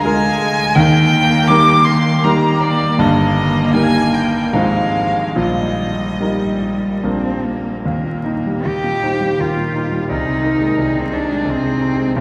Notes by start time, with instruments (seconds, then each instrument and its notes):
Already playing: grand piano D2 D3 G#3 F4 A#4
0.02 cello G#3, grand piano G#3 F4 A#4, violin G#5
0.75 grand piano D#2 D#3, cello A#3, violin G5
1.47 grand piano G3 D#4 A#4, violin D6
1.84 violin C6
2.23 grand piano G3 D#4 A#4, cello A#3, violin A#5
2.60 violin D5
2.98 grand piano G1 G2, cello A#3, violin D#5
3.73 grand piano G3 D#4 A#4, violin G#5
4.14 violin G5
4.53 grand piano G#1 G#2 F3 C4 C5, cello G#3, violin F5
5.36 grand piano A#1 A#2, cello G3, violin D#5
6.20 grand piano G3 D#4 A#4, cello G3
7.03 grand piano A#1 A#2 F3 D4 A#4, cello C4
7.46 cello A#3
7.85 grand piano D#2, cello A#3
8.03 grand piano A#2
8.24 grand piano D#4
8.46 grand piano G3
8.65 grand piano D#2, cello G4, violin D#5
8.84 grand piano A#2
9.03 grand piano D#4, violin C5
9.21 grand piano G3
9.39 grand piano D#2, cello F4, violin A#4
9.57 grand piano A#2
9.74 grand piano D#4
9.91 grand piano G3
10.09 grand piano C2, cello D#4, violin G#4
10.27 grand piano C3
10.43 grand piano D#4, violin A#4
10.60 grand piano G#3
10.78 grand piano C2, violin G#4
10.96 grand piano C3, cello C4
11.12 cello D4, grand piano D#4
11.29 grand piano G#3
11.45 grand piano C2
11.50 cello C4
11.62 grand piano C3
11.80 grand piano D#4
11.97 grand piano G#3
12.16 grand piano B1, cello B3, violin G4